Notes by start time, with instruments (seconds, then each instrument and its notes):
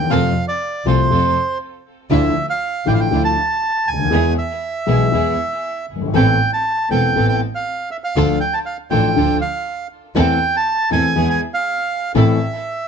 Already playing: bandoneon G5
0.04 grand piano E2
0.10 grand piano F2 C3 F3 A3 F4, double bass F2, string section C4 F4 A4, bandoneon F5
0.48 bandoneon D5
0.85 double bass C2, grand piano C2 C3 F3 A3 F4, string section C4 F4 A4, bandoneon C5
1.10 double bass F2, grand piano F2 C3 F3 A3 F4, string section C4 F4 A4
2.10 double bass D2, grand piano D2 D3 F3 A3 E4, string section D4 E4 F4, bandoneon E5
2.50 bandoneon F5
2.86 double bass A1, grand piano A1 A2 D3 F3 A3 E4, string section D4 E4 F4, bandoneon G5
2.94 bandoneon F5
3.00 bandoneon G5
3.11 double bass D2, grand piano D2 D3 F3 A3 E4, string section D4 E4 F4
3.25 bandoneon A5
3.86 double bass D2, bandoneon G#5
3.93 grand piano C#2
3.99 grand piano D2
4.05 grand piano D#2
4.11 grand piano E2 E3 G#3 B3 G#4, double bass E2, string section B3 E4 G#4
4.38 bandoneon E5
4.86 grand piano B1 B2 E3 G#3 B3 G#4, double bass B1, string section B3 E4 G#4
5.12 grand piano E2 E3 G#3 B3 G#4, double bass E2, string section B3 E4 G#4
5.89 double bass G1
5.96 grand piano F#1
6.01 grand piano G1
6.07 grand piano G#1
6.14 grand piano A1 A2 E3 B3 C4 A4, double bass A1, string section B3 C4 A4, bandoneon G5
6.53 bandoneon A5
6.90 grand piano E1 E2 E3 B3 C4 A4, double bass E1, string section B3 C4 A4, bandoneon G5
7.16 grand piano A1 A2 E3 B3 C4 A4, double bass A1, string section B3 C4 A4
7.29 bandoneon G5
7.55 bandoneon F5
7.91 bandoneon E5
8.04 bandoneon F5
8.16 double bass D2, grand piano D2 D3 F3 A3 D4 A4, string section D4 F4 A4
8.41 bandoneon G5
8.53 bandoneon A5
8.66 bandoneon F5
8.90 grand piano A1 A2 F3 A3 D4 A4, double bass A1, string section D4 F4 A4, bandoneon G5
9.16 grand piano D2 D3 F3 A3 D4 A4, double bass D2, string section D4 F4 A4
9.41 bandoneon F5
10.15 double bass E2, grand piano E2 E3 A3 C4 A4, string section C4 E4 A4
10.20 bandoneon G5
10.57 bandoneon A5
10.91 double bass E2, grand piano E2 E3 A3 C4 A4, string section C4 E4 A4, bandoneon G#5
11.15 double bass E2, grand piano E2 E3 G#3 B3 G#4, string section B3 E4 G#4
11.30 bandoneon G#5
11.54 bandoneon F5
12.15 grand piano A1 A2 E3 A3 C4 A4, double bass A1, string section C4 E4 A4, bandoneon E5